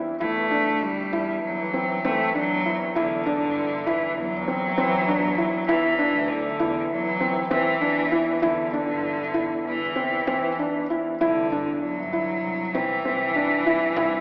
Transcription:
Already playing: E2 E4
0.20 E2 A3 E4, frame drum
0.51 D4
0.67 D2
0.82 G3
1.13 E2 E4, frame drum
1.43 E2 F#3
1.59 E3
1.74 C4
2.05 E3 A3 C4, frame drum
2.35 F#3 D4
2.51 E2
2.65 E4
2.95 E2 D3 E4, frame drum
3.26 D4
3.42 G2
3.87 E2 E3 E4, frame drum
4.17 E2 F#3
4.33 E2
4.48 C4
4.78 E3 C4, frame drum
5.08 D4
5.23 E2
5.38 E4
5.67 E2 E3 E4, frame drum
5.99 D4
6.14 D2
6.28 D3
6.60 E2 E4, frame drum
6.90 E2 F#3
7.06 E3
7.20 C4
7.51 E3 C4, frame drum
7.81 D4
7.97 E2
8.12 E4
8.42 E2 D3 E4, frame drum
8.73 D4
8.88 G2
9.34 E2 E4, frame drum
9.65 E2 E3
9.81 E2
9.96 C4
10.27 E3 C4, frame drum
10.59 D4
10.75 E2
10.90 E4
11.20 C2 D3 E4, frame drum
11.52 G2 D4
11.67 E2
11.82 F#3, frame drum
11.97 G2
12.13 E4, frame drum
12.44 C2, frame drum
12.74 C2 E3 C4, frame drum
13.04 C2 C4, frame drum
13.36 D4
13.66 C2 E4, frame drum
13.96 C2 E4, frame drum

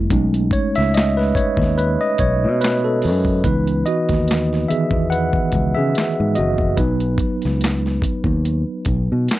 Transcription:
Already playing: G#3 A#3 E4
0.10 B1 G#3 A3 C#4 D#4, kick, closed hi-hat
0.34 closed hi-hat
0.51 C#5, kick, closed hi-hat
0.75 C#2 E5, snare, closed hi-hat
0.94 D#5, snare, closed hi-hat
0.98 clap
1.17 B4, snare
1.35 C#5, kick, closed hi-hat
1.57 D#2, kick
1.62 snare
1.78 B4, closed hi-hat
2.01 D#5
2.18 B1 C#5, kick, closed hi-hat
2.44 B2
2.61 B4, snare, closed hi-hat
2.65 clap
2.84 A4
3.02 F#2, open hi-hat
3.25 kick
3.44 C#2 E3 B3 D#4 B4, kick, closed hi-hat
3.67 closed hi-hat
3.86 F#4 D#5, closed hi-hat
4.09 D#2, kick, snare, closed hi-hat
4.28 snare, closed hi-hat
4.32 clap
4.53 snare
4.68 D#3 E3 B3 G#4 E5, muted fingered electric bass stroke, closed hi-hat
4.91 E2, kick
5.10 B4 F#5, closed hi-hat
5.33 kick
5.52 C#2, kick, closed hi-hat
5.74 C#3 G#4 E5
5.95 snare, clap, closed hi-hat
6.20 G#2
6.35 F#1 F#4 D#5, closed hi-hat
6.58 kick
6.77 B1 F#3 B3 D#4 B4, kick, closed hi-hat
7.00 closed hi-hat
7.18 kick, closed hi-hat
7.42 C#2, snare, closed hi-hat
7.61 snare, closed hi-hat
7.65 clap
7.86 snare
8.02 muted fingered electric bass stroke, kick, closed hi-hat
8.24 D#2, kick
8.45 closed hi-hat
8.85 B1, kick, closed hi-hat
9.12 B2
9.28 snare, clap, closed hi-hat

